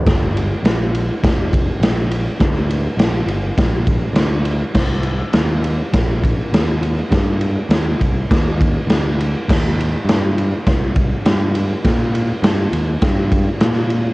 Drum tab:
CC |--------|--------|x-------|--------|
RD |xxxxxxxx|xxxxxxxx|-xxxxxxx|xxxxxxxx|
SD |o-o-o-o-|o-o-o-o-|o-o-o-o-|o-o-o-o-|
BD |o---oo--|o---oo--|o---oo--|o--ooo--|

CC |x-------|--------|
RD |-xxxxxxx|xxxxxxxx|
SD |o-o-o-o-|o-o-o-o-|
BD |o---oo--|o---oo--|